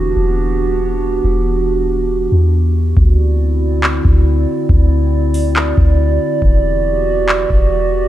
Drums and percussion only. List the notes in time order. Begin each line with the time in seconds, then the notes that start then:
2.97 kick
3.84 clap
4.05 kick
4.69 kick
5.34 open hi-hat
5.56 clap
5.77 kick
6.42 kick
7.29 clap
7.50 kick